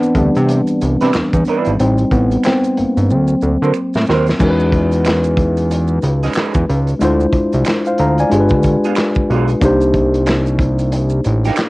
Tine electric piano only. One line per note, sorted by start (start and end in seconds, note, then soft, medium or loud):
0.00 0.16 E3 medium
0.00 0.18 B3 medium
0.00 1.80 C4 loud
0.00 0.18 D4 loud
0.18 0.46 E3 soft
0.18 1.79 G3 medium
0.18 0.46 B3 soft
0.18 0.47 D4 medium
1.80 2.25 G3 medium
1.80 2.25 C4 loud
1.80 2.26 D#4 medium
2.13 2.46 B3 medium
2.46 2.60 C4 medium
2.78 3.10 A#3 medium
3.10 4.36 F#3 medium
3.10 4.37 A#3 soft
3.10 4.37 C4 medium
4.39 6.96 G#3 medium
4.39 6.97 C#4 medium
4.39 6.97 D#4 medium
4.39 6.98 F#4 medium
4.44 4.50 A#4 medium
4.50 7.02 B4 medium
6.99 8.28 G#3 medium
6.99 8.29 D4 medium
6.99 8.29 E4 medium
6.99 8.30 F4 medium
7.05 7.35 C5 medium
7.87 7.99 C5 medium
7.87 7.99 F5 medium
8.00 8.18 F5 medium
8.00 8.17 A#5 medium
8.20 8.50 D5 medium
8.20 8.50 G#5 medium
8.29 9.58 G#3 medium
8.29 9.58 D4 medium
8.29 9.59 F4 medium
8.29 9.60 G4 medium
8.33 8.40 G#4 medium
8.40 9.63 B4 medium
9.61 11.69 A#3 medium
9.61 11.69 D4 medium
9.61 11.69 D#4 medium
9.61 11.69 G4 medium
9.65 11.69 C5 medium